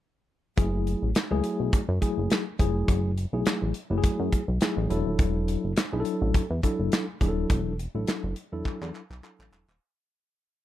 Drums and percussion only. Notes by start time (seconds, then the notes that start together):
0.58 kick, closed hi-hat
0.87 closed hi-hat
1.15 snare, clap, closed hi-hat
1.44 closed hi-hat
1.73 kick, closed hi-hat
2.02 kick, closed hi-hat
2.30 snare, clap, closed hi-hat
2.59 kick, closed hi-hat
2.88 kick, closed hi-hat
3.18 closed hi-hat
3.46 snare, clap, closed hi-hat
3.74 closed hi-hat
4.04 kick, closed hi-hat
4.33 kick, closed hi-hat
4.61 snare, clap, closed hi-hat
4.90 closed hi-hat
5.19 kick, closed hi-hat
5.48 closed hi-hat
5.76 snare, clap, closed hi-hat
6.05 closed hi-hat
6.34 kick, closed hi-hat
6.63 kick, closed hi-hat
6.92 snare, clap, closed hi-hat
7.21 kick, closed hi-hat
7.50 kick, closed hi-hat
7.79 closed hi-hat
8.07 snare, clap, closed hi-hat
8.36 closed hi-hat
8.65 kick, clap
8.82 clap
8.95 clap
9.11 clap
9.24 clap
9.40 clap
9.53 clap
9.69 clap